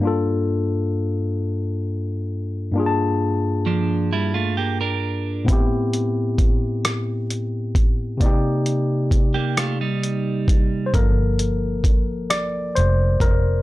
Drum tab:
HH |------|------|xxxxxx|xxxxxx|
SD |------|------|---r--|---r--|
BD |------|------|o-o--o|o-o--o|

HH |xxxxxx|
SD |---r--|
BD |o-o--o|